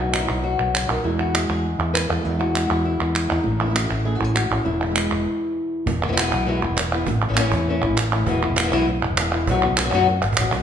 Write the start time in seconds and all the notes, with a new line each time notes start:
Already playing: B1 B2 D#4 F#4
0.00 B3
0.12 F#3 B3 D#4 F#4, clap
0.20 E4
0.27 B1 B3 D#4 F#4, clap
0.42 F#4, muted nylon-string guitar stroke
0.59 B1 B3
0.74 C#3, clap
0.87 B1 D#3 B3 D#4 F#4, clap
1.03 E2 B2 E3 G#3 B3 E4
1.19 G#3 B3 E4 F#4, clap
1.34 E3 G#3 B3 E4, clap
1.50 E2 G#4, clap
1.64 muted nylon-string guitar stroke
1.78 E2 G#3 B3 E4, clap
1.94 B4, clap
2.09 E2 G#3 B3 E4 A4, clap
2.23 E2 B2 E3 G#3 B3 E4 G#4
2.38 G#3 B3 E4 F#4, clap
2.54 E3 G#3 B3 E4, clap
2.66 E4 F#4
2.70 E2, clap
2.85 E4, muted nylon-string guitar stroke
2.99 E2 G#3 B3 E4
3.15 clap
3.30 E2 G#3 B3 D#4 E4, clap
3.44 A1 A2, muted nylon-string guitar stroke
3.60 E3 A3 C#4 E4
3.65 E3 A3 C#4 E4
3.70 E3 A3 C#4 E4
3.74 E3 A3 C#4 E4 F#4, clap
3.90 A1 E4, clap
4.05 E3 A3 C#4 E4 G#4
4.15 F#4
4.20 A1 A3 C#4 E4, clap
4.24 G#4
4.35 G#2 F#4, muted nylon-string guitar stroke, clap
4.50 A1 F#2 A3 C#4 E4, clap
4.65 E1 E2 E4, muted nylon-string guitar stroke
4.81 E3 G#3 B3 E4, clap
4.86 E3 G#3 B3 E4
4.90 E3 G#3 B3 E4
4.95 B2 E3 G#3 B3 E4, clap
5.11 E1, clap
5.86 E1, muted nylon-string guitar stroke, cajon bass
6.03 E3 G#3 B3 E4
6.07 E1 E3 G#3 B3 E4
6.13 E3 G#3 B3 E4
6.17 B2 E3 G#3 B3 E4, cajon slap, clap
6.32 B1, cajon bass, cajon slap, clap
6.46 B2 E3 G#3 B3 E4, cajon slap
6.62 E1 G#3 B3 E4, clap
6.69 E1
6.77 muted nylon-string guitar stroke, cajon slap, clap
6.93 G#3 B3 E4, clap
7.07 A1, muted nylon-string guitar stroke, cajon bass
7.22 cajon slap, clap
7.29 A1 E3 A3 C#4 E4
7.33 E3 A3 C#4 E4, clap
7.37 E3 A3 C#4 E4, cajon slap
7.52 E2, cajon bass, clap
7.68 E3 A3 C#4 E4
7.82 A1 A3 C#4 E4
7.89 A1
7.97 muted nylon-string guitar stroke, cajon slap, clap
8.13 A3 C#4 E4, clap
8.26 E1 B2 E3 G#3 B3 E4, cajon bass
8.42 G#3 B3 E4
8.50 E1
8.56 E3 G#3 B3 E4, cajon slap, clap
8.63 E3 G#3 B3 E4
8.68 B2 E3 G#3 B3 E4
8.72 B1 E3 G#3 B3 E4, cajon bass, cajon slap, clap
8.88 muted nylon-string guitar stroke
9.03 E1, clap
9.10 E1
9.17 E3 G#3 B3 E4, cajon slap, clap
9.32 G#3 B3 E4, clap
9.47 B1 B2 F#3 B3 D#4 F#4, cajon bass
9.62 B3 D#4 F#4, cajon slap, clap
9.71 B1
9.77 B3 D#4 F#4, cajon slap, clap
9.84 F#3 B3 D#4 F#4
9.89 F#2 F#3 B3 D#4 F#4, cajon bass, cajon slap, clap
9.93 B2 F#3 B3 D#4 F#4
10.07 muted nylon-string guitar stroke, cajon slap
10.22 G#1, cajon slap, clap
10.33 cajon bass
10.37 A1 F#3 B3 D#4 F#4, clap
10.42 cajon bass
10.52 B1 B3 D#4 F#4, cajon bass, clap